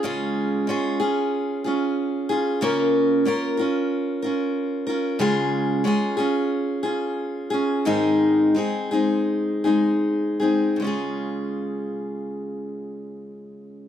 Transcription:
\new Staff \with { instrumentName = "Steel-string acoustic guitar" } { \time 4/4 \key des \major \tempo 4 = 91 <des aes des' f' aes'>4 <aes des' f' aes'>8 <des' f' aes'>4 <des' f' aes'>4 <des' f' aes'>8 | <des bes des' f' bes'>4 <bes des' f' bes'>8 <des' f' bes'>4 <des' f' bes'>4 <des' f' bes'>8 | <des aes des' f' aes'>4 <aes des' f' aes'>8 <des' f' aes'>4 <des' f' aes'>4 <des' f' aes'>8 | <aes, ees aes c' ees' aes'>4 <aes c' ees' aes'>8 <aes c' ees' aes'>4 <aes c' ees' aes'>4 <aes c' ees' aes'>8 |
<des aes des' f' aes'>1 | }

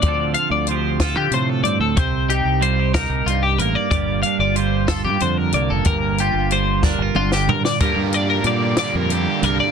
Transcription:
<<
  \new Staff \with { instrumentName = "Clean electric guitar" } { \time 6/8 \key g \minor \tempo 4. = 62 d''8 f''16 d''16 c''8 a'16 g'16 c''16 a'16 d''16 a'16 | c''8 g'8 c''8 bes'8 f'16 g'16 bes'16 d''16 | d''8 f''16 d''16 c''8 a'16 g'16 c''16 bes'16 d''16 a'16 | bes'8 g'8 c''8 bes'8 f'16 g'16 bes'16 d''16 |
bes'8 d''16 bes'16 d''8 d''16 bes'16 g'8 bes'16 d''16 | }
  \new Staff \with { instrumentName = "Clean electric guitar" } { \time 6/8 \key g \minor << { <f c' f' a'>8 f'8 g'8 f'4 c'8 | r8 ees'8 f'16 g'16 ees'4 bes8 | <g bes f' g'>8 d'16 f'16 f'8 f'4 bes8~ | bes8 f'8 f'8 d'16 f'4~ f'16 |
<g bes f' g'>2. | } \\ { d4 f4 a,4 | c4 g4 g,4 | g,4 g4 d4 | g,4 g4 d4 |
g,4 g8 bes,8 r8 g,8 | } >> }
  \new Staff \with { instrumentName = "Overdriven electric guitar" } { \time 6/8 \key g \minor r2. | r2. | r2. | r2. |
<g, d g bes d'>8 <g bes d'>8 <d g bes d'>8 <g bes d'>8 <d g bes d'>8 <g bes d'>8 | }
  \new Staff \with { instrumentName = "Fingered electric bass" } { \clef bass \time 6/8 \key g \minor d,8 r16 d,4 d16 c8 g,16 d,16 | c,8. c,4 c,16 c,8 a,,16 r16 | g,,8 r16 g,,4 g,16 f,8 c,16 f,,16 | g,,8. g,,4 g,,16 g,,8 g,16 r16 |
g,16 g,8. bes,8 r16 f,8 r16 c,16 r16 | }
  \new DrumStaff \with { instrumentName = "Drums" } \drummode { \time 6/8 <hh bd>8 hh8 hh8 <hh bd sn>8 hh8 hh8 | <hh bd>8 hh8 hh8 <hh bd sn>8 hh8 hh8 | <hh bd>8 hh8 hh8 <hh bd sn>8 hh8 hh8 | <hh bd>8 hh8 hh8 <bd sn>8 toml16 sn16 tomfh16 sn16 |
<hh bd>8 hh8 hh8 <hh sn>8 hh8 hh8 | }
>>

